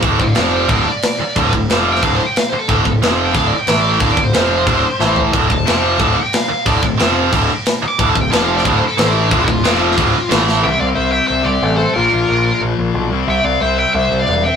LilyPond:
<<
  \new Staff \with { instrumentName = "Lead electric guitar" } { \time 4/4 \key d \minor \tempo 4 = 181 r8 <d'' f''>8 <d'' f''>8 <d'' g''>8 <d'' g''>8 d''4.~ | d''8 r8 \tuplet 3/2 { r4 g''8 f''8 c''8 g''8 f''8 c''8 a'8~ } | a'8 r8 \tuplet 3/2 { r4 g''8 f''8 d''8 g''8 g''8 d''8 g''8 } | \tuplet 3/2 { f''8 d''8 c''8~ } c''2~ c''8 r8 |
r8 a''4. a''8 g''8 f''4 | d''8 r2 r8 \tuplet 3/2 { r4 d'''8~ } | \tuplet 3/2 { d'''8 a''8 g''8 a''8 f''8 d''8 f''8 c''8 a'8 c''8 g'8 d'8 } | \tuplet 3/2 { f'8 f'4~ } f'2~ f'8 r8 |
g''8 f''8 e''8 g''8 e''8 d''4 c''8 | bes'2 r2 | g''8 f''8 e''8 g''8 e''8. f''8. g''8 | }
  \new Staff \with { instrumentName = "Lead electric guitar" } { \time 4/4 \key d \minor r1 | r1 | r1 | r1 |
r1 | r1 | r1 | r1 |
e''8 d''8 c''8 e''8 c''8 g'4 a'8 | f'2 r2 | e''8 d''8 c''8 e''8 c''8. d''8. e''8 | }
  \new Staff \with { instrumentName = "Distorted electric guitar" } { \clef bass \time 4/4 \key d \minor <d, a, d>8 <d, a,>8 <f, c f>4 <d, a, d>8 r4. | <d, a, d>8 <d, a,>8 <f, c f>4 <d, a, d>8 r4. | <d, a, d>8 <d, a,>8 <f, c f>4 <d, a, d>8 r8 <a, e a>4 | <d, a, d>8 <d, a,>8 <f, c f>4 <d, a, d>8 r8 <a, e a>4 |
<d, a, d>8 <d, a,>8 <f, c f>4 <d, a, d>8 r4. | <d, a, d>8 <d, a,>8 <f, c f>4 <d, a, d>8 r4. | <d, a, d>8 <d, a,>8 <f, c f>4 <d, a, d>8 r8 <a, e a>4 | <d, a, d>8 <d, a,>8 <f, c f>4 <d, a, d>8 r8 <a, e a>4 |
<c g c'>1 | <bes, f bes>2.~ <bes, f bes>8 <c g c'>8~ | <c g c'>2.~ <c g c'>8 r8 | }
  \new Staff \with { instrumentName = "Distorted electric guitar" } { \clef bass \time 4/4 \key d \minor <d, a, d>8 <d, a,>8 <f, c f>4 <d, a, d>8 r4. | <d, a, d>8 <d, a,>8 <f, c f>4 <d, a, d>8 r4. | <d, a, d>8 <d, a,>8 <f, c f>4 <d, a, d>8 r8 <a, e a>4 | <d, a, d>8 <d, a,>8 <f, c f>4 <d, a, d>8 r8 <a, e a>4 |
<d, a, d>8 <d, a,>8 <f, c f>4 <d, a, d>8 r4. | <d, a, d>8 <d, a,>8 <f, c f>4 <d, a, d>8 r4. | <d, a, d>8 <d, a,>8 <f, c f>4 <d, a, d>8 r8 <a, e a>4 | <d, a, d>8 <d, a,>8 <f, c f>4 <d, a, d>8 r8 <a, e a>4 |
r1 | r1 | r1 | }
  \new Staff \with { instrumentName = "Picked electric bass" } { \clef bass \time 4/4 \key d \minor d,,8 d,,8 f,,4 d,,8 r4. | d,,8 d,,8 f,,4 d,,8 r4. | d,,8 d,,8 f,,4 d,,8 r8 a,,4 | d,,8 d,,8 f,,4 d,,8 r8 a,,4 |
d,,8 d,,8 f,,4 d,,8 r4. | d,,8 d,,8 f,,4 d,,8 r4. | d,,8 d,,8 f,,4 d,,8 r8 a,,4 | d,,8 d,,8 f,,4 d,,8 r8 a,,4 |
c,8 c,8 c,4 c,8 c,8 a,,4 | bes,,8 bes,,8 bes,,4 bes,,8 bes,,8 b,,8 c,8 | c,8 c,8 c,4 c,8 c,8 e,,4 | }
  \new DrumStaff \with { instrumentName = "Drums" } \drummode { \time 4/4 <cymc bd>8 bd8 <cymc sn>4 <cymc bd>4 <cymc sn>4 | <cymc bd>8 bd8 <cymc sn>8. sn16 <cymc bd>4 <cymc sn>4 | <cymc bd>8 bd8 <cymc sn>4 <cymc bd>4 <cymc sn>4 | <cymc bd>8 bd8 <cymc sn>4 <cymc bd>4 sn8 tomfh8 |
<cymc bd>8 bd8 <cymc sn>4 <cymc bd>4 <cymc sn>4 | <cymc bd>8 bd8 <cymc sn>4 <cymc bd>4 <cymc sn>4 | <cymc bd>8 bd8 <cymc sn>8. sn16 <cymc bd>4 <cymc sn>4 | <cymc bd>8 bd8 <cymc sn>16 sn8 sn16 <cymc bd>4 <cymc sn>8 sn8 |
r4 r4 r4 r4 | r4 r4 r4 r4 | r4 r4 r4 r4 | }
>>